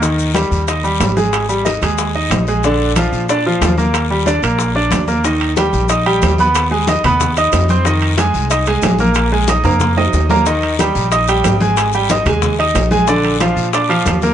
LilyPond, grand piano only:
\new Staff \with { instrumentName = "Grand piano" } { \time 4/4 \key ees \major \tempo 4 = 184 <ees ees'>4 <g g'>4 <ees' ees''>8 <g g'>4 <aes aes'>8~ | <aes aes'>8 <g g'>8 <ees' ees''>8 <aes aes'>4 <ees' ees''>4 <aes aes'>8 | <d d'>4 <f f'>4 <d' d''>8 <f f'>4 <bes bes'>8~ | <bes bes'>8 <g g'>8 <d' d''>8 <bes bes'>4 <d' d''>4 <bes bes'>8 |
<ees ees' ees''>4 <g g' g''>4 <ees' ees'' ees'''>8 <g g' g''>4 <ces' ces'' ces'''>8~ | <ces' ces'' ces'''>8 <aes aes' aes''>8 <ees' ees'' ees'''>8 <ces' ces'' ces'''>4 <ees' ees'' ees'''>4 <c' c'' c'''>8 | <ees ees' ees''>4 <aes aes' aes''>4 <ees' ees'' ees'''>8 <aes aes' aes''>4 <bes bes' bes''>8~ | <bes bes' bes''>8 <aes aes' aes''>8 <ees' ees'' ees'''>8 <bes bes' bes''>4 <ees' ees'' ees'''>4 <bes bes' bes''>8 |
<ees ees' ees''>4 <g g' g''>4 <ees' ees'' ees'''>8 <g g' g''>4 <aes aes' aes''>8~ | <aes aes' aes''>8 <g g' g''>8 <ees' ees'' ees'''>8 <aes aes' aes''>4 <ees' ees'' ees'''>4 <aes aes' aes''>8 | <d d' d''>4 <f f' f''>4 <d' d'' d'''>8 <f f' f''>4 <bes bes' bes''>8 | }